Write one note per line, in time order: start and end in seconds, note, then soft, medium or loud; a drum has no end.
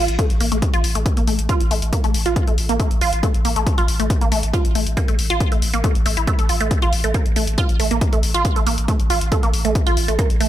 0.08 0.19 A1 medium
0.08 closed hi-hat medium
0.19 0.23 A3 medium
0.19 kick loud
0.19 closed hi-hat medium
0.30 0.40 A1 medium
0.30 closed hi-hat soft
0.40 0.51 A1 loud
0.40 0.47 A#3 medium
0.40 open hi-hat medium
0.52 0.62 A1 medium
0.52 0.58 A3 medium
0.52 closed hi-hat medium
0.62 kick loud
0.62 closed hi-hat medium
0.74 0.83 A1 medium
0.74 0.83 F4 loud
0.74 closed hi-hat medium
0.84 0.95 A1 loud
0.84 open hi-hat loud
0.95 1.06 A1 medium
0.95 0.99 A3 medium
0.95 closed hi-hat medium
1.06 kick loud
1.06 closed hi-hat medium
1.17 1.27 A1 medium
1.17 1.23 A#3 medium
1.17 closed hi-hat medium
1.27 1.38 A1 loud
1.27 1.34 A3 medium
1.27 open hi-hat medium
1.39 1.49 A1 medium
1.39 closed hi-hat medium
1.49 1.59 F4 loud
1.49 kick loud
1.49 closed hi-hat medium
1.60 1.70 A1 medium
1.60 closed hi-hat medium
1.71 1.82 A1 loud
1.71 1.75 A3 medium
1.71 open hi-hat loud
1.82 1.92 A1 medium
1.82 closed hi-hat medium
1.93 1.99 A#3 medium
1.93 kick loud
1.93 closed hi-hat medium
2.04 2.14 A1 medium
2.04 2.10 A3 medium
2.04 closed hi-hat medium
2.14 2.25 A1 loud
2.14 open hi-hat loud
2.26 2.36 A1 medium
2.26 2.35 F4 loud
2.26 closed hi-hat medium
2.36 kick loud
2.36 closed hi-hat medium
2.47 2.57 A1 medium
2.47 2.51 A3 medium
2.47 closed hi-hat soft
2.58 2.69 A1 loud
2.58 open hi-hat loud
2.69 2.79 A1 medium
2.69 2.75 A#3 medium
2.69 closed hi-hat medium
2.80 2.86 A3 medium
2.80 kick loud
2.80 closed hi-hat medium
2.91 3.01 A1 medium
2.91 closed hi-hat medium
3.01 3.12 A1 loud
3.01 3.11 F4 loud
3.01 open hi-hat medium
3.13 3.23 A1 medium
3.13 closed hi-hat medium
3.23 3.27 A3 medium
3.23 kick loud
3.23 closed hi-hat medium
3.34 3.44 A1 medium
3.34 closed hi-hat medium
3.45 3.56 A1 loud
3.45 3.51 A#3 medium
3.45 open hi-hat loud
3.56 3.66 A1 medium
3.56 3.62 A3 medium
3.56 closed hi-hat medium
3.67 kick loud
3.67 closed hi-hat medium
3.78 3.88 A1 medium
3.78 3.87 F4 loud
3.78 closed hi-hat medium
3.88 3.99 A1 loud
3.88 open hi-hat loud
4.00 4.10 A1 medium
4.00 4.03 A3 medium
4.00 closed hi-hat medium
4.10 kick loud
4.10 closed hi-hat medium
4.21 4.31 A1 medium
4.21 4.28 A#3 medium
4.21 closed hi-hat medium
4.32 4.43 A1 loud
4.32 4.38 A3 medium
4.32 open hi-hat loud
4.43 4.53 A1 medium
4.43 closed hi-hat medium
4.54 4.64 F4 loud
4.54 kick loud
4.54 closed hi-hat medium
4.65 4.75 A1 medium
4.65 closed hi-hat medium
4.75 4.86 A1 loud
4.75 4.79 A3 medium
4.75 open hi-hat loud
4.87 4.97 A1 medium
4.87 closed hi-hat medium
4.97 5.04 A#3 medium
4.97 kick loud
4.97 closed hi-hat medium
5.08 5.18 A1 medium
5.08 5.14 A3 medium
5.08 closed hi-hat soft
5.19 5.29 A1 loud
5.19 open hi-hat loud
5.30 5.40 A1 medium
5.30 5.39 F4 loud
5.30 closed hi-hat medium
5.40 kick loud
5.40 closed hi-hat medium
5.52 5.62 A1 medium
5.52 5.55 A3 medium
5.52 closed hi-hat soft
5.62 5.73 A1 medium
5.62 open hi-hat loud
5.74 5.84 A1 medium
5.74 5.80 A#3 medium
5.74 closed hi-hat medium
5.84 5.91 A3 medium
5.84 kick loud
5.84 closed hi-hat medium
5.95 6.05 A1 medium
5.95 closed hi-hat soft
6.06 6.16 A1 loud
6.06 6.16 A3 medium
6.06 open hi-hat loud
6.17 6.27 A1 medium
6.17 6.21 E4 medium
6.17 closed hi-hat medium
6.27 6.37 A3 medium
6.27 kick loud
6.27 closed hi-hat medium
6.39 6.49 A1 medium
6.39 6.45 A4 medium
6.39 closed hi-hat medium
6.49 6.60 A1 loud
6.49 6.56 F4 medium
6.49 open hi-hat medium
6.60 6.71 A1 medium
6.60 6.70 A3 medium
6.60 closed hi-hat medium
6.71 kick loud
6.71 closed hi-hat medium
6.82 6.92 A1 medium
6.82 6.91 F4 loud
6.82 closed hi-hat soft
6.93 7.03 A1 loud
6.93 open hi-hat loud
7.04 7.14 A1 medium
7.04 7.08 A3 medium
7.04 closed hi-hat medium
7.14 7.21 A#3 medium
7.14 kick loud
7.14 closed hi-hat medium
7.26 7.36 A1 medium
7.26 closed hi-hat soft
7.36 7.47 A1 loud
7.36 7.43 A3 medium
7.36 open hi-hat loud
7.47 7.58 A1 medium
7.47 closed hi-hat medium
7.58 7.68 F4 loud
7.58 kick loud
7.58 closed hi-hat medium
7.69 7.79 A1 medium
7.69 closed hi-hat soft
7.80 7.90 A1 loud
7.80 7.84 A3 medium
7.80 open hi-hat loud
7.91 8.01 A1 medium
7.91 7.97 A#3 medium
7.91 closed hi-hat medium
8.01 kick loud
8.01 closed hi-hat medium
8.13 8.23 A1 medium
8.13 8.19 A3 medium
8.13 closed hi-hat soft
8.23 8.34 A1 loud
8.23 open hi-hat medium
8.34 8.45 A1 medium
8.34 8.44 F4 loud
8.34 closed hi-hat medium
8.45 kick loud
8.45 closed hi-hat medium
8.56 8.66 A1 medium
8.56 8.60 A3 medium
8.56 closed hi-hat soft
8.67 8.77 A1 loud
8.67 8.73 A#3 medium
8.67 open hi-hat loud
8.78 8.88 A1 medium
8.78 closed hi-hat soft
8.88 8.95 A3 medium
8.88 kick loud
8.88 closed hi-hat medium
9.00 9.09 A1 medium
9.00 closed hi-hat soft
9.10 9.21 A1 medium
9.10 9.20 F4 loud
9.10 open hi-hat medium
9.21 9.32 A1 medium
9.21 closed hi-hat medium
9.32 9.36 A3 medium
9.32 kick loud
9.32 closed hi-hat medium
9.43 9.53 A1 medium
9.43 9.49 A#3 medium
9.43 closed hi-hat soft
9.53 9.64 A1 loud
9.53 open hi-hat loud
9.65 9.75 A1 medium
9.65 9.71 A3 medium
9.65 closed hi-hat soft
9.75 kick loud
9.75 closed hi-hat medium
9.87 9.96 A1 medium
9.87 9.96 F4 loud
9.87 closed hi-hat medium
9.97 10.08 A1 loud
9.97 open hi-hat medium
10.08 10.19 A1 medium
10.08 10.12 A3 medium
10.08 closed hi-hat soft
10.19 10.25 A#3 medium
10.19 kick loud
10.19 closed hi-hat medium
10.30 10.40 A1 medium
10.30 closed hi-hat soft
10.40 10.49 A1 loud
10.40 10.47 A3 medium
10.40 open hi-hat loud